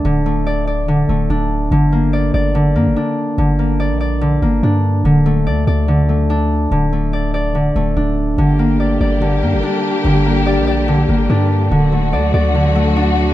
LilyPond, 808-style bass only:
\new Staff \with { instrumentName = "808-style bass" } { \clef bass \time 4/4 \key g \minor \tempo 4 = 144 d,,2~ d,,8 d,,8 d,,4 | g,,4. g,,4 g,16 g,,16 r4 | g,,4~ g,,16 bes,,4~ bes,,16 g,,8 g,4 | d,,4 d,8 d,2~ d,8 |
d,,2~ d,,8 d,,8 d,,4 | g,,4. g,,4 g,16 g,,16 r4 | g,,4~ g,,16 bes,,4~ bes,,16 g,,8 g,4 | d,,4 d,8 d,2~ d,8 | }